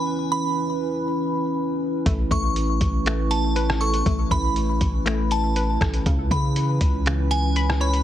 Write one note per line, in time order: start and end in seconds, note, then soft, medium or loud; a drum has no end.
0.00 2.02 E3 medium
0.00 6.02 C#4 medium
0.00 8.02 E4 medium
0.00 6.02 B4 medium
0.32 1.52 B5 medium
2.06 2.30 A1 loud
2.06 2.30 A3 loud
2.06 6.02 A3 medium
2.06 kick loud
2.06 closed hi-hat medium
2.31 2.79 A1 loud
2.31 3.05 A3 medium
2.31 3.27 C#6 medium
2.31 kick medium
2.31 closed hi-hat medium
2.56 closed hi-hat medium
2.81 4.02 A1 loud
2.81 kick medium
2.81 closed hi-hat medium
3.06 4.05 A3 loud
3.06 finger snap loud
3.06 closed hi-hat medium
3.31 3.78 A5 medium
3.31 closed hi-hat medium
3.56 5.06 B4 loud
3.56 closed hi-hat medium
3.70 cross-stick medium
3.81 5.31 A4 medium
3.81 4.05 C#6 medium
3.81 closed hi-hat soft
3.94 closed hi-hat medium
4.06 4.30 A1 loud
4.06 4.30 A3 loud
4.06 kick loud
4.06 closed hi-hat medium
4.31 4.79 A1 loud
4.31 5.05 A3 medium
4.31 5.27 B5 medium
4.31 kick medium
4.31 closed hi-hat medium
4.56 closed hi-hat medium
4.81 5.77 A1 loud
4.81 kick medium
4.81 closed hi-hat medium
5.06 6.06 A3 loud
5.06 finger snap loud
5.06 closed hi-hat medium
5.31 6.02 A5 medium
5.31 closed hi-hat medium
5.56 6.06 B4 loud
5.56 closed hi-hat medium
5.81 6.05 A1 loud
5.81 6.06 A4 medium
5.81 kick loud
5.81 cross-stick loud
5.81 closed hi-hat soft
5.94 closed hi-hat medium
6.06 6.30 C#2 loud
6.06 6.30 C#3 loud
6.06 8.03 E3 medium
6.06 8.03 C#4 medium
6.06 8.03 B4 medium
6.06 kick loud
6.06 closed hi-hat medium
6.31 6.79 C#3 loud
6.31 7.05 C#3 medium
6.31 7.27 B5 medium
6.31 kick medium
6.31 closed hi-hat medium
6.56 closed hi-hat medium
6.81 8.02 C#2 loud
6.81 kick medium
6.81 closed hi-hat medium
7.06 8.03 C#3 medium
7.06 finger snap loud
7.06 closed hi-hat medium
7.31 7.78 G#5 medium
7.31 closed hi-hat medium
7.56 8.03 B5 loud
7.56 closed hi-hat medium
7.70 cross-stick medium
7.81 8.03 C#5 medium
7.81 8.03 B5 medium
7.81 closed hi-hat soft
7.93 closed hi-hat medium